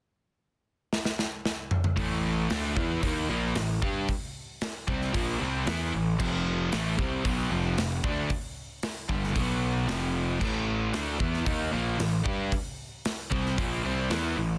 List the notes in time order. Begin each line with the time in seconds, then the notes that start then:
0.93 snare
1.05 snare
1.19 snare
1.45 snare
1.71 mid tom
1.84 mid tom
1.97 A1 A2 E3 A3, kick, open hi-hat
2.49 D2 D3 A3 D4, snare, open hi-hat
2.76 E2 E3 B3 E4, kick
3.02 D#2 D#3 A#3 D#4, kick, open hi-hat
3.29 A#1 A#2 F3 A#3
3.55 A1 A2 E3, snare, open hi-hat
3.82 G2 G3 D4 G4, kick
4.08 kick, open hi-hat
4.61 snare, open hi-hat
4.88 C2 C3 G3 C4, kick
5.01 snare
5.13 A#1 A#2 F3 A#3, kick, open hi-hat
5.40 C2 C3 G3 C4
5.67 E2 E3 B3 E4, snare, open hi-hat
5.93 A1 A2 E3
6.19 F1 F2 C3 F3, kick, crash
6.71 A1 A2 E3 A3, snare, open hi-hat
6.98 C2 C3 G3 C4, kick
7.25 B1 B2 F#3 B3, kick, open hi-hat
7.51 F1 F2 C3 F3
7.78 F1 F2 C3, snare, open hi-hat
8.04 D2 D3 A3 D4, kick
8.30 kick, open hi-hat
8.83 snare, open hi-hat
9.09 G1 G2 D3 G3, kick
9.24 snare
9.35 B1 B2 F#3 B3, kick, open hi-hat
9.87 F1 F2 C3 F3, snare, open hi-hat
10.40 A1 A2 E3 A3, kick, crash
10.94 D2 D3 A3 D4, snare, open hi-hat
11.19 E2 E3 B3 E4, kick
11.33 snare
11.46 D#2 D#3 A#3 D#4, kick, open hi-hat
11.72 A#1 A#2 F3 A#3
11.99 A1 A2 E3, snare, open hi-hat
12.25 G2 G3 D4 G4, kick
12.52 kick, open hi-hat
13.05 snare, open hi-hat
13.31 C2 C3 G3 C4, kick
13.46 snare
13.58 A#1 A#2 F3 A#3, kick, open hi-hat
13.84 C2 C3 G3 C4
14.10 E2 E3 B3 E4, snare, open hi-hat
14.37 A1 A2 E3